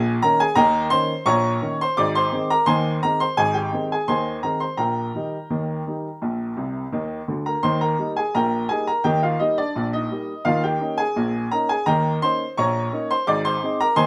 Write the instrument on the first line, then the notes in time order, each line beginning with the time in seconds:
upright piano
Already playing: A#1 A#2 G#4 G#5
0.22 D#3 A#3 C#4 A#4 A#5
0.40 G#4 G#5
0.55 D#2 D#3 A#4 G5 A#5
0.90 D#3 A#3 C#4 C5 C6
1.26 A#1 A#2 C#5 A#5 C#6
1.61 D#3 A#3 C#4
1.81 C5 C6
1.97 G#1 G#2 D5 D6
2.15 C5 C6
2.32 D#3 G#3 C4
2.50 A#4 A#5
2.66 D#2 D#3 C5 G#5 C6
3.03 D#3 G#3 C4 A#4 A#5
3.20 C5 C6
3.37 G#1 G#2 G#4 G#5
3.54 G4 G5
3.73 D#3 G#3 C4
3.92 G#4 G#5
4.08 D#2 D#3 C5 G#5 C6
4.43 D#3 G#3 C4 A#4 A#5
4.60 C5 C6
4.77 A#1 A#2 A#4 G5 A#5
5.15 D#3 G3 D#4
5.50 D#2 D#3
5.87 D#3 G3 D#4
6.22 A#1 A#2
6.57 C2 C3
6.92 D#2 D#3
7.28 D2 D3
7.46 A#4 A#5
7.63 D#2 D#3 C5 C6
7.81 A#4 A#5
7.99 G3 A#3 D#4
8.16 G#4 G#5
8.35 A#1 A#2 A#4 G5 A#5
8.69 G3 A#3 D#4 G#4 G#5
8.87 A#4 A#5
9.04 D#2 D#3 G4 G5
9.23 F4 F5
9.39 G3 A#3 D#4 D#5
9.58 D4 D5
9.76 A#1 A#2
9.93 D#4 D#5
10.11 G3 A#3 D#4
10.45 D#2 D#3 F4 F5
10.63 G4 G5
10.80 A#3 C#4 D#4
10.98 G#4 G#5
11.16 A#1 A#2
11.51 A#3 C#4 D#4 A#4 A#5
11.69 G#4 G#5
11.86 D#2 D#3 A#4 G5 A#5
12.22 A#3 C#4 D#4 C5 C6
12.57 A#1 A#2 C#5 A#5 C#6
12.92 A#3 C#4 D#4
13.11 C5 C6
13.27 G#1 G#2 D5 D6
13.45 C5 C6
13.63 G#3 C4 D#4
13.80 A#4 A#5
13.96 D#2 D#3 C5 G#5 C6